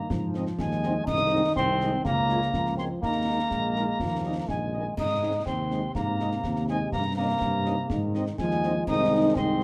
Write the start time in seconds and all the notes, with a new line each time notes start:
Already playing: D#3 A#3 A#5
0.10 G#2 F3, concert bass drum, snare
0.34 C4 D#4 D#5, snare
0.47 snare
0.59 D#2 G#3 G#5, concert bass drum, snare
0.71 snare
0.83 C4 D#4 D#5, snare
1.06 C2 D#3 D#4 D#6, concert bass drum, snare, crash
1.32 G#3 C4 D#4 D#5
1.56 C2 C4 C6, concert bass drum, snare
1.80 G#3 C4 D#4 D#5, snare
2.05 C#2 C#3 A#3 A#5, concert bass drum, snare
2.29 G#3 A#3 F4 C#5, snare
2.42 snare
2.54 C#2 F3, concert bass drum, snare
2.66 snare
2.77 G#3 A#3 C4 F4 C#5 C6, snare
3.01 D#2 D#3 A#3 A#5, concert bass drum, snare
3.26 G#3 A#3 D#4 A#4
3.50 A#1 G#3, concert bass drum, snare
3.75 G#3 A#3 D#4 A#4, snare
3.99 D#2 F3, concert bass drum, snare
4.24 G3 A#3 D#4 D#5
4.48 A#1 D#3 G#3 G#5, concert bass drum, snare
4.73 G3 A#3 D#4 D#5
4.97 G#2 D#4 D#6, concert bass drum, snare, crash
5.21 G#3 C4 D#4 D#5
5.46 D#2 C3 C4 C6, concert bass drum, snare
5.71 G#3 C4 D#4 D#5, snare
5.95 G#2 A#3 A#5, concert bass drum, snare
6.20 G#3 C4 D#4 D#5, snare
6.31 snare
6.44 D#2, concert bass drum, snare
6.56 snare
6.68 G#3 C4 D#4 D#5 G#5, snare
6.92 G2 A#3 A#5, concert bass drum, snare
7.16 A#3 C#4 D#4 D#5 A#5
7.41 G2, concert bass drum, snare
7.64 A#3 C#4 D#4 D#5, snare
7.90 G#2 D#3, concert bass drum, snare
8.14 C4 D#4 D#5, snare
8.26 snare
8.38 D#2 F3 G#3 G#5, concert bass drum, snare
8.51 snare
8.63 C4 D#4 D#5, snare
8.87 C2 D#3 G#3 C4 D#4 D#5 D#6, concert bass drum, snare, crash
9.35 C2 G#3 C4 D#4 D#5 C6, concert bass drum, snare
9.60 snare